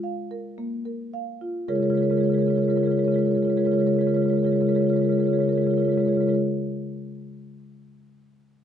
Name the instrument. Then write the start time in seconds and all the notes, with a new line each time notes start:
marimba
Already playing: F4
0.03 F5
0.31 A#4
0.58 A#3
0.85 A#4
1.14 F5
1.41 F4
1.68 C#3 G#3 F4 G#4 A#4 C#5
1.75 G#3 F4 G#4 A#4 C#5
1.80 C#3 F4 G#4 A#4 C#5
1.86 G#3 A#4 C#5
1.90 C#3 F4 G#4
1.94 G#3 F4 G#4 A#4 C#5
2.01 C#3 G#3 A#4 C#5
2.05 F4 G#4
2.09 C#3 G#3 F4 G#4 A#4 C#5
2.17 C#3 G#3 F4 G#4 A#4 C#5
2.23 G#3 F4 A#4 C#5
2.28 C#3 G#4 C#5
2.32 G#3 F4 G#4 A#4
2.38 C#3 F4 A#4 C#5
2.42 G#3 G#4 C#5
2.46 C#3 G#3 F4 G#4 A#4
2.51 A#4 C#5
2.55 C#3 G#3 F4 G#4 C#5
2.62 F4 G#4 A#4 C#5
2.68 C#3 G#3 F4 G#4 A#4 C#5
2.76 C#3 G#3 F4 G#4 A#4 C#5
2.83 G#3 F4 G#4 A#4 C#5
2.88 C#3 G#3 A#4 C#5
2.92 F4 G#4
2.97 C#3 G#3 F4 G#4 A#4 C#5
3.04 C#3 F4 G#4 A#4 C#5
3.08 G#3 C#5
3.12 G#3 F4 G#4 A#4
3.17 C#3 A#4 C#5
3.21 F4 G#4
3.25 C#3 G#3 G#4 A#4 C#5
3.30 G#3 F4 C#5
3.35 C#3 F4 G#4 A#4 C#5
3.42 G#3 F4 G#4 A#4 C#5
3.47 C#3 G#3 G#4 A#4
3.51 F4 C#5
3.57 C#3 G#3 F4 G#4 A#4 C#5
3.64 C#3 G#3 F4 G#4 A#4 C#5
3.72 G#3 F4 G#4 A#4 C#5
3.77 C#3 F4 G#4 A#4 C#5
3.82 G#3
3.86 C#3 F4 G#4 A#4 C#5
3.91 G#3 F4 G#4 A#4 C#5
3.97 C#3 G#3 F4 G#4
4.01 A#4 C#5
4.06 C#3 G#3 F4 G#4 A#4 C#5
4.14 C#3 G#3 F4 G#4 A#4 C#5
4.21 G#3 F4 G#4 A#4 C#5
4.26 C#3 F4 G#4 C#5
4.30 C#3 G#3 A#4
4.35 G#3 F4 G#4 A#4 C#5
4.43 C#3 G#3 F4 G#4 C#5
4.47 A#4 C#5
4.51 C#3 G#3 F4 G#4 A#4
4.56 F4 G#4 C#5
4.61 C#3 G#3 A#4 C#5
4.65 G#3 F4 G#4 A#4 C#5
4.70 C#3 F4
4.75 G#3 G#4 A#4 C#5
4.79 C#3 F4 G#4 A#4 C#5
4.84 G#3 F4
4.89 C#3 G#4 A#4 C#5
4.93 G#3 F4 G#4 A#4 C#5
5.00 C#3 G#3 F4 G#4 C#5
5.05 F4 A#4
5.09 C#3 G#3 G#4 A#4 C#5
5.15 C#3 G#3 F4 G#4 C#5
5.20 F4 A#4
5.24 G#3 G#4 A#4 C#5
5.28 C#3 F4 C#5
5.33 G#3 G#4 A#4
5.37 C#3 G#3 F4 G#4 C#5
5.42 F4 A#4 C#5
5.48 C#3 G#3 F4 G#4 A#4
5.53 G#4 A#4 C#5
5.58 C#3 G#3 F4 C#5
5.62 F4 G#4 A#4
5.66 C#3 G#3 A#4 C#5
5.71 G#3 F4 G#4 C#5
5.77 C#3 F4 G#4 A#4 C#5
5.82 G#3 F4 G#4 A#4
5.86 C#3 G#3 C#5
5.91 F4 G#4 A#4 C#5
5.97 C#3 G#3 F4 G#4 A#4 C#5
6.04 C#3 G#3 A#4 C#5
6.08 F4 G#4
6.13 G#3 F4 G#4 A#4 C#5
6.17 C#3 G#3 A#4 C#5
6.22 F4 G#4
6.27 C#3 G#3 F4 G#4 A#4 C#5
6.34 A#4 C#5